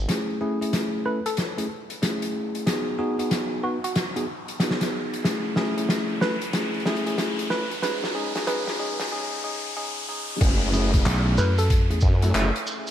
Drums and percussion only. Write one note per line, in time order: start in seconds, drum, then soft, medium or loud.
0.09 snare soft
0.09 closed hi-hat medium
0.62 closed hi-hat soft
0.73 snare medium
0.73 closed hi-hat medium
1.26 closed hi-hat medium
1.37 snare soft
1.37 closed hi-hat medium
1.58 closed hi-hat medium
1.90 closed hi-hat medium
2.03 snare medium
2.03 closed hi-hat medium
2.22 closed hi-hat medium
2.55 closed hi-hat medium
2.67 snare medium
2.67 closed hi-hat medium
3.19 closed hi-hat medium
3.31 snare medium
3.31 closed hi-hat medium
3.84 closed hi-hat medium
3.96 snare medium
3.96 closed hi-hat medium
4.16 closed hi-hat medium
4.48 closed hi-hat medium
4.60 snare medium
4.60 closed hi-hat medium
4.70 snare medium
4.81 snare soft
4.81 closed hi-hat medium
5.14 closed hi-hat medium
5.25 snare medium
5.25 closed hi-hat medium
5.56 snare medium
5.78 closed hi-hat medium
5.89 snare medium
5.89 closed hi-hat medium
6.21 snare medium
6.42 closed hi-hat medium
6.53 snare medium
6.53 closed hi-hat medium
6.74 closed hi-hat soft
6.80 closed hi-hat soft
6.86 snare medium
6.86 closed hi-hat soft
6.96 closed hi-hat soft
7.07 closed hi-hat medium
7.18 snare medium
7.18 closed hi-hat medium
7.39 closed hi-hat medium
7.50 snare medium
7.71 closed hi-hat soft
7.82 snare medium
7.82 closed hi-hat medium
8.04 snare medium
8.35 snare loud
8.35 closed hi-hat medium
8.47 snare loud
8.47 closed hi-hat medium
8.68 snare medium
9.00 snare loud
9.00 closed hi-hat medium
9.08 closed hi-hat medium
10.41 kick loud
10.41 closed hi-hat medium
10.41 crash loud
10.41 shekere soft
10.73 shekere loud
10.94 kick medium
10.94 closed hi-hat medium
10.94 shekere medium
11.05 clap loud
11.05 closed hi-hat medium
11.05 shekere soft
11.38 shekere loud
11.58 closed hi-hat medium
11.58 shekere medium
11.70 kick loud
11.70 closed hi-hat medium
11.70 shekere soft
11.91 closed hi-hat medium
12.01 kick loud
12.01 shekere medium
12.22 closed hi-hat medium
12.22 shekere soft
12.34 clap loud
12.34 closed hi-hat medium
12.34 shekere soft
12.56 closed hi-hat medium
12.67 shekere medium
12.87 shekere medium